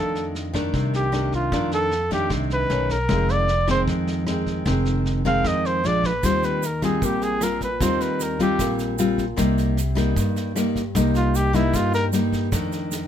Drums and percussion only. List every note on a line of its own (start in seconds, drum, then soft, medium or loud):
0.15 snare soft
0.35 snare soft
0.54 kick soft
0.54 cross-stick medium
0.54 snare soft
0.74 kick medium
0.74 snare soft
0.93 snare soft
1.13 cross-stick medium
1.13 snare soft
1.32 kick soft
1.32 snare soft
1.52 kick medium
1.52 cross-stick medium
1.52 snare soft
1.71 snare soft
1.91 snare soft
2.11 kick soft
2.11 snare soft
2.30 kick medium
2.30 cross-stick medium
2.30 snare soft
2.50 snare soft
2.70 snare soft
2.89 kick soft
2.89 snare soft
3.09 kick medium
3.09 cross-stick medium
3.09 snare soft
3.29 snare soft
3.48 snare soft
3.68 kick soft
3.68 cross-stick medium
3.68 snare soft
3.88 kick medium
3.88 snare soft
4.07 snare soft
4.27 cross-stick medium
4.27 snare soft
4.46 kick soft
4.46 snare soft
4.66 kick medium
4.66 cross-stick medium
4.66 snare soft
4.85 snare soft
5.06 snare soft
5.25 kick soft
5.25 snare soft
5.44 kick medium
5.44 cross-stick medium
5.44 snare soft
5.65 snare soft
5.84 snare soft
6.04 kick soft
6.04 snare soft
6.23 kick medium
6.23 cross-stick medium
6.23 snare soft
6.23 shaker medium
6.43 snare soft
6.43 shaker soft
6.63 snare soft
6.63 shaker medium
6.82 kick soft
6.82 cross-stick medium
6.82 snare soft
6.82 shaker soft
7.02 kick medium
7.02 snare soft
7.02 shaker medium
7.22 snare soft
7.22 shaker soft
7.41 cross-stick medium
7.41 snare soft
7.41 shaker medium
7.61 kick soft
7.61 snare soft
7.61 shaker soft
7.81 kick medium
7.81 cross-stick medium
7.81 snare soft
7.81 shaker medium
8.00 snare soft
8.00 shaker soft
8.20 snare soft
8.20 shaker medium
8.39 kick soft
8.39 snare soft
8.39 shaker soft
8.59 kick medium
8.59 cross-stick medium
8.59 snare soft
8.59 shaker medium
8.79 snare soft
8.79 shaker soft
8.98 snare soft
8.98 shaker medium
9.18 kick soft
9.18 snare soft
9.18 shaker soft
9.37 kick medium
9.37 cross-stick medium
9.37 snare soft
9.37 shaker medium
9.58 snare soft
9.58 shaker soft
9.77 snare soft
9.77 shaker medium
9.97 kick soft
9.97 cross-stick medium
9.97 snare soft
9.97 shaker soft
10.16 kick medium
10.16 snare soft
10.16 shaker medium
10.36 snare soft
10.36 shaker soft
10.56 cross-stick medium
10.56 snare soft
10.56 shaker medium
10.76 kick soft
10.76 snare soft
10.76 shaker soft
10.95 kick medium
10.95 cross-stick medium
10.95 snare soft
10.95 shaker medium
11.15 snare soft
11.15 shaker soft
11.35 snare soft
11.35 shaker medium
11.54 kick soft
11.54 snare soft
11.54 shaker soft
11.74 kick medium
11.74 cross-stick medium
11.74 snare soft
11.74 shaker medium
11.94 snare soft
11.94 shaker soft
12.13 snare soft
12.13 shaker medium
12.32 kick soft
12.32 snare soft
12.32 shaker soft
12.52 kick medium
12.52 cross-stick medium
12.52 snare soft
12.52 shaker medium
12.72 snare soft
12.72 shaker soft
12.92 snare soft
12.92 shaker medium